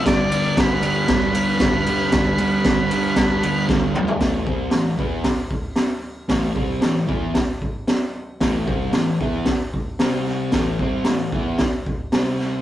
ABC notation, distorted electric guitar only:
X:1
M:4/4
L:1/8
Q:1/4=114
K:Am
V:1 name="Distorted electric guitar" clef=bass
[G,,D,G,] [G,,D,G,] [G,,D,G,] [G,,D,G,] [G,,D,G,] [G,,D,G,] [G,,D,G,] [G,,D,G,] | [G,,D,G,] [G,,D,G,] [G,,D,G,] [G,,D,G,] [G,,D,G,] [G,,D,G,] [G,,D,G,] [G,,D,G,] | [A,,E,A,] [C,G,C] [A,,E,] [E,B,E] z4 | [A,,E,A,] [C,G,C] [A,,E,] [E,B,E] z4 |
[A,,E,A,] [C,G,C] [A,,E,] [E,B,E] z2 [C,G,C]2 | [A,,E,A,] [C,G,C] [A,,E,] [E,B,E] z2 [C,G,C]2 |]